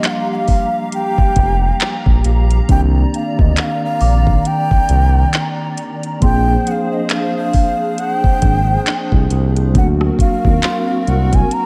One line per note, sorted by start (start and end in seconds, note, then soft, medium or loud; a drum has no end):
0.00 2.64 F3 medium
0.00 2.65 G3 medium
0.00 2.65 A#3 medium
0.00 2.66 D4 medium
0.00 2.66 G4 medium
0.00 2.65 F5 medium
0.00 6.18 A#5 medium
0.00 1.01 C6 medium
0.00 closed hi-hat medium
0.04 0.11 F#5 medium
0.04 clap loud
0.10 0.31 F5 medium
0.32 0.90 F5 loud
0.32 0.37 F#5 loud
0.48 kick medium
0.48 open hi-hat medium
0.92 2.22 G5 loud
0.92 closed hi-hat medium
1.18 kick medium
1.36 1.71 F1 medium
1.36 kick medium
1.36 closed hi-hat medium
1.80 clap loud
1.80 closed hi-hat medium
2.06 2.21 A#1 medium
2.06 kick medium
2.24 2.60 A#1 medium
2.24 closed hi-hat medium
2.24 open hi-hat medium
2.50 closed hi-hat medium
2.68 3.04 C2 loud
2.68 6.17 D#3 medium
2.68 6.18 D#3 medium
2.68 6.18 A#3 medium
2.68 6.18 C4 medium
2.68 6.19 D4 medium
2.68 6.19 G4 medium
2.68 6.18 D5 medium
2.68 2.81 G5 loud
2.68 kick loud
2.68 closed hi-hat medium
3.14 3.42 F5 loud
3.14 closed hi-hat medium
3.39 3.53 D2 loud
3.39 3.61 D#5 medium
3.39 kick loud
3.57 3.65 F#5 medium
3.57 clap loud
3.57 closed hi-hat medium
3.64 3.84 F5 loud
3.85 4.49 F5 loud
4.01 4.36 A#1 loud
4.01 5.42 D6 medium
4.01 open hi-hat medium
4.27 kick medium
4.45 5.79 G5 loud
4.45 closed hi-hat medium
4.71 4.78 C2 medium
4.71 kick medium
4.89 5.24 C2 loud
4.89 closed hi-hat medium
5.33 clap loud
5.33 closed hi-hat medium
5.77 closed hi-hat medium
5.77 open hi-hat medium
6.03 closed hi-hat medium
6.20 6.57 A#1 loud
6.20 9.70 F3 medium
6.20 9.71 A#3 medium
6.20 9.71 C4 medium
6.20 9.71 D4 medium
6.20 9.72 D4 medium
6.20 9.71 G#4 medium
6.20 9.71 C5 medium
6.20 6.69 G5 loud
6.20 7.63 C6 medium
6.20 kick loud
6.20 closed hi-hat medium
6.24 9.72 G#4 medium
6.67 6.72 F#5 medium
6.67 closed hi-hat medium
6.71 6.94 F5 loud
6.93 7.11 D#5 medium
7.10 7.35 F5 loud
7.10 clap loud
7.10 closed hi-hat medium
7.37 8.01 F5 loud
7.53 kick medium
7.53 open hi-hat soft
7.98 8.14 F#5 loud
7.98 closed hi-hat medium
8.14 9.32 G5 loud
8.24 kick medium
8.42 8.77 G#1 loud
8.42 kick medium
8.42 closed hi-hat medium
8.87 clap loud
8.87 closed hi-hat medium
9.12 9.27 C2 medium
9.12 kick medium
9.30 9.77 C2 loud
9.30 closed hi-hat medium
9.30 open hi-hat medium
9.56 closed hi-hat medium
9.73 10.10 D2 loud
9.73 11.66 F#3 medium
9.73 11.66 A#3 medium
9.73 11.66 C4 medium
9.73 11.66 D4 medium
9.73 11.66 F#4 medium
9.73 11.66 A#4 medium
9.73 kick loud
9.73 closed hi-hat medium
9.77 11.66 F#4 medium
9.77 9.87 F#5 medium
10.01 cross-stick medium
10.19 11.11 F5 loud
10.19 kick loud
10.19 closed hi-hat medium
10.45 10.59 D#2 medium
10.45 kick loud
10.63 11.66 C6 medium
10.63 clap loud
10.63 closed hi-hat medium
11.07 11.42 C2 loud
11.07 11.36 F#5 medium
11.07 closed hi-hat soft
11.33 11.55 G#5 loud
11.33 kick medium
11.33 closed hi-hat medium
11.51 11.66 A#5 loud
11.51 closed hi-hat medium